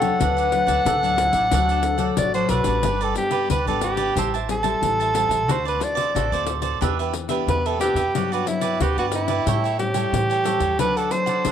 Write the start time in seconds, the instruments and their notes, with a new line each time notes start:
Already playing: upright bass E2, nylon-string guitar C#3, flute A4, soprano saxophone F#5
0.01 nylon-string guitar F#3 A3 D4, cavaquinho A4 C#5 G5, pandeiro
0.20 upright bass D2, nylon-string guitar D3, cavaquinho D4 A4 D5 F#5, flute B4, pandeiro
0.37 cavaquinho A4 D5 F#5, pandeiro
0.51 nylon-string guitar F#3 A3 D4, muted cavaquinho stroke, pandeiro
0.67 upright bass D2, cavaquinho A4 D5 F#5, pandeiro
0.85 upright bass D2, nylon-string guitar A2, cavaquinho D4 A4 D5 F#5, flute A4, pandeiro
1.02 nylon-string guitar F#3 A3 D4, cavaquinho A4 D5 F#5, pandeiro
1.17 flute E4, pandeiro
1.33 upright bass A1, cavaquinho A4 D5 F#5, pandeiro
1.50 upright bass D2, nylon-string guitar D3 F#3 A3 D4, cavaquinho D4 A4 D5, flute F#4, pandeiro
1.55 cavaquinho F#5
1.69 cavaquinho A4 D5 F#5, pandeiro
1.83 flute A4, muted cavaquinho stroke, pandeiro
1.98 nylon-string guitar F#3 A3 D4, cavaquinho A4 D5 F#5, pandeiro
2.16 upright bass A1, nylon-string guitar A2, flute F#4, soprano saxophone D5, pandeiro
2.34 nylon-string guitar F#3 A3 D4, cavaquinho A4 D5 F#5, soprano saxophone C5, pandeiro
2.48 upright bass B1, cavaquinho D4 A4 D5 F#5, flute F#4, soprano saxophone B4, pandeiro
2.64 upright bass A1, nylon-string guitar G3 B3 D4, cavaquinho A4 D5 F#5, pandeiro
2.83 upright bass G1, nylon-string guitar G2, cavaquinho D4 G4 B4 D5, pandeiro
3.01 cavaquinho G4 B4 D5, soprano saxophone A4, pandeiro
3.15 nylon-string guitar G3 B3 D4, soprano saxophone G4, muted cavaquinho stroke, pandeiro
3.31 cavaquinho G4 B4 D5, pandeiro
3.49 upright bass D2, nylon-string guitar D3, cavaquinho D4 G4 B4 D5, soprano saxophone B4, pandeiro
3.66 upright bass G#1, nylon-string guitar G3 B3 D4, cavaquinho G4 B4 D5, soprano saxophone A4, pandeiro
3.81 soprano saxophone G4, pandeiro
3.97 cavaquinho G4 B4 D5, pandeiro
4.15 upright bass A1, nylon-string guitar A2 G3 C4 E4, cavaquinho G4 C5 E5 A5, pandeiro
4.34 cavaquinho C5 E5 A5, pandeiro
4.48 nylon-string guitar G3 C4 E4, soprano saxophone A4, muted cavaquinho stroke, pandeiro
4.63 nylon-string guitar G3 C4 E4, cavaquinho C5 E5 A5, pandeiro
4.82 upright bass A1, nylon-string guitar E3, pandeiro
5.00 cavaquinho C5 E5 A5, pandeiro
5.14 nylon-string guitar G3 C4 E4, cavaquinho G4 C5 E5 A5, pandeiro
5.29 upright bass A1, cavaquinho C5 E5 A5, pandeiro
5.48 upright bass D2, nylon-string guitar D3 A3 C4 F#4, cavaquinho F#4 A4 C5 D5, soprano saxophone C5, pandeiro
5.65 cavaquinho A4 C5 D5, soprano saxophone B4, pandeiro
5.80 nylon-string guitar A3 C4 F#4, soprano saxophone D5, muted cavaquinho stroke, pandeiro
5.95 cavaquinho A4 C5 D5, pandeiro
6.15 upright bass A1, nylon-string guitar A2, cavaquinho F#4 A4 C5 D5, pandeiro
6.32 upright bass D2, nylon-string guitar A3 C4 F#4, cavaquinho A4 C5 D5, pandeiro
6.47 pandeiro
6.62 cavaquinho A4 C5 D5, pandeiro
6.81 upright bass E2, nylon-string guitar E3 B3 D4 G4, cavaquinho D4 G4 B4 E5, pandeiro
6.99 cavaquinho G4 B4 E5, pandeiro
7.14 muted cavaquinho stroke, pandeiro
7.28 nylon-string guitar B3 D4 G4, cavaquinho G4 B4 E5, pandeiro
7.47 upright bass E2, nylon-string guitar B2, soprano saxophone B4, pandeiro
7.66 cavaquinho G4 B4 E5, soprano saxophone A4, pandeiro
7.79 nylon-string guitar B3 D4 G4, cavaquinho D4 G4 B4 E5, soprano saxophone G4, pandeiro
7.94 upright bass E2, cavaquinho B4 E5, pandeiro
7.98 cavaquinho G4
8.13 upright bass G2, nylon-string guitar G2 F#3 B3 D4, cavaquinho F#4 G4 B4 D5, pandeiro
8.32 soprano saxophone F#4, cavaquinho G4 B4 D5, pandeiro
8.45 nylon-string guitar F#3 B3 D4, soprano saxophone E4, muted cavaquinho stroke, pandeiro
8.61 cavaquinho G4 B4 D5, pandeiro
8.80 upright bass D2, nylon-string guitar D3, cavaquinho F#4 G4 B4 D5, soprano saxophone G4, pandeiro
8.97 upright bass G2, nylon-string guitar B3 D4, soprano saxophone F#4, cavaquinho G4 B4 D5, pandeiro
9.12 soprano saxophone E4, pandeiro
9.28 cavaquinho G4 B4 D5, pandeiro
9.46 nylon-string guitar A2 G3 C#4 E4, upright bass A2, cavaquinho G4 A4 C#5 G5, pandeiro
9.64 cavaquinho A4 C#5 G5, pandeiro
9.78 nylon-string guitar G3 C#4 E4, soprano saxophone G4, muted cavaquinho stroke, pandeiro
9.93 nylon-string guitar G3 C#4 E4, cavaquinho A4 C#5 G5, pandeiro
10.12 upright bass A2, nylon-string guitar E3, pandeiro
10.30 cavaquinho A4 C#5 G5, pandeiro
10.44 nylon-string guitar G3 C#4 E4, cavaquinho G4 A4 C#5 G5, pandeiro
10.60 upright bass E2, cavaquinho A4 C#5 G5, pandeiro
10.78 upright bass D2, nylon-string guitar D3 F#3 A3 D4, cavaquinho D4 A4 D5 F#5, soprano saxophone B4, pandeiro
10.97 soprano saxophone A4, cavaquinho A4 D5 F#5, pandeiro
11.11 nylon-string guitar F#3 A3 D4, soprano saxophone C5, muted cavaquinho stroke, pandeiro
11.26 cavaquinho A4 D5 F#5, pandeiro
11.45 upright bass A1, nylon-string guitar A2, cavaquinho D4 A4 D5 F#5, pandeiro